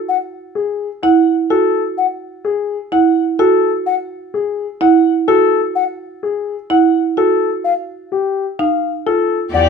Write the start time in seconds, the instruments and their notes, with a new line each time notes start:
0.09 flute F#5
0.55 grand piano G#4
1.03 marimba E4, grand piano F#5
1.50 marimba F#4, grand piano A4
1.98 flute F#5
2.45 grand piano G#4
2.92 marimba E4, grand piano F#5
3.39 marimba F#4, grand piano A4
3.86 flute F#5
4.34 grand piano G#4
4.81 marimba E4, grand piano F#5
5.28 marimba F#4, grand piano A4
5.75 flute F#5
6.23 grand piano G#4
6.70 marimba E4, grand piano F#5
7.17 marimba F#4, grand piano A4
7.64 flute F5
8.12 grand piano G4
8.59 marimba D#4, grand piano F5
9.06 marimba F4, grand piano A4
9.53 cello E2, string section G4 D5, grand piano D5, flute F#5